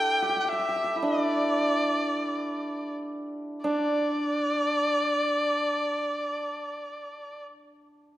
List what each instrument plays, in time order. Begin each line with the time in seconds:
Already playing: hammered dulcimer D4 E4 G4 A4, erhu G5
0.22 hammered dulcimer G4
0.29 hammered dulcimer G4
0.36 hammered dulcimer G4
0.40 erhu G5
0.45 hammered dulcimer G4, erhu E5
0.52 hammered dulcimer G4
0.59 hammered dulcimer G4
0.69 hammered dulcimer G4
0.76 hammered dulcimer G4
0.84 hammered dulcimer G4
0.96 hammered dulcimer E4
1.02 hammered dulcimer D4, erhu D#5
1.22 erhu D5
3.64 hammered dulcimer D4, erhu D5